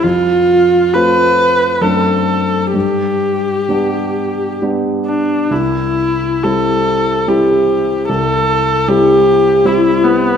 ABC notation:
X:1
M:3/4
L:1/8
Q:1/4=68
K:C
V:1 name="Viola"
F2 B2 A2 | G4 z D | E2 A2 G2 | A2 G2 E B, |]
V:2 name="Grand piano"
F,,2 [A,CF]2 [^F,,A,CD]2 | G,,2 [G,B,D]2 [G,B,D]2 | C,,2 [G,CE]2 [G,CE]2 | C,,2 [G,CE]2 [G,CE]2 |]